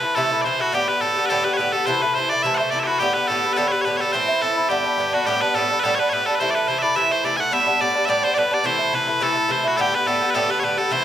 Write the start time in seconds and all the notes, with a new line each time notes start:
Already playing: B4
0.03 E3 A3 E4
0.15 C3 E3 A3 E4 A4
0.31 E3 A3 E4
0.41 C3 E3 C5 D5
0.46 A3 E4
0.60 E3 A3 E4 F#4
0.72 A2 D3 B3 G4
0.87 D3 B3 G4 B4
1.00 A2 D3 B3 G4 A4
1.16 D3 B3 G4
1.26 A2 A4 B4
1.31 D3 B3 G4
1.44 D3 B3 G4 B4
1.53 B4 C#5
1.58 A2 D3 B3 G4
1.73 D3 B3 G4 A4
1.86 C3 E3 A3 E4 C5
2.02 E3 A3 E4 B4
2.14 C3 E3 A3 C5
2.18 E4
2.30 A3 E4 D5
2.34 E3
2.43 C3 E3 A3 E4 E5
2.55 C5 F#5
2.59 E3 A3 E4
2.71 C3 E3 A3 D5
2.75 E4
2.79 E5
2.84 E4 F#4 G4
2.89 E3 A3
2.99 A2 D3 B3 G4
3.14 B3 G4 B4
3.18 D3
3.28 A2 D3 B3 G4 A4
3.44 D3 B3 G4
3.53 A2 D3 B4
3.57 B3 G4 A4
3.68 B4 C#5
3.72 D3 B3 G4
3.81 A2 B4 C#5
3.86 D3 B3 G4
3.97 G4 A4 C#5
4.01 D3 B3
4.12 A2 E3 C4 E4 C5
4.28 E3 C4 E4
4.41 A2 E3 C4 E4 A4
4.56 E3 C4 E4
4.69 G2 D3 B3 D4 G4
4.84 D3 B3 D4
4.98 G2 D3 B3 D4
5.13 D3 B3 D4 F#4
5.26 A2 G3 B3 D4 G4
5.41 G3 B3 D4 B4
5.55 A2 G3 B3 D4 A4
5.70 G3 B3 D4
5.80 A2 B4
5.84 G3 B3 D4 A4
5.95 D4 C#5
5.99 G3 B3 B4
6.09 A2 G3 B4 C#5
6.14 B3 D4
6.26 G3 B3 D4 A4
6.35 B4 C5
6.40 C3 E3 A3 E4
6.51 E4 D5
6.55 E3 A3 B4
6.68 C3 E3 A3 E4 C5
6.79 E4 D5 E5
6.84 E3 A3
6.95 C3 E3 A3 E4 E5
7.10 E3 A3 E4 C5
7.23 C3 E3 A3 E4 D5
7.37 A3 E4 F#5 G#5
7.41 E3
7.51 A2 G3 B3 D4 E5
7.66 G3 B3 D4
7.79 A2 G3 B3 D4 D5
7.94 G3 B3 D4
8.05 A2 G3 B3 D5 E5
8.10 D4
8.23 G3 B3 D4 C5
8.34 A2 G3 B3 B4 D5
8.38 D4
8.51 G3 B3 D4 D5
8.64 C3 E3 A3 E4 C5
8.79 E3 A3 E4
8.92 C3 E3 A3 E4 B4
9.07 E3 A3 E4
9.20 C3 E3 A3 E4 A4
9.35 E3 A3 E4
9.48 C3 E3 A3 E4 C5
9.63 E3 A3 E4
9.68 F#4
9.77 A2 D3 B3 G4 A4
9.81 G4
9.92 D3 B3 G4 B4
10.05 A2 D3 B3 G4 A4
10.20 D3 B3 G4
10.31 A2 B4
10.35 D3 B3 G4 A4
10.49 D3 B3 G4 B4
10.60 A2 D3 C#5
10.64 B3 G4 B4
10.77 D3 B3 G4 A4
10.90 C3 E3 A3 E4 C5